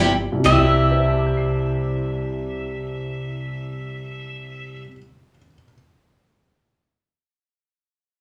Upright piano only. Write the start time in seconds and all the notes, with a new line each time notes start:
0.32 C2
0.39 C3
0.45 G3
0.51 E4
0.57 G4
0.91 C5
0.99 E5
1.08 A5
1.16 D6
1.26 G6
1.37 C7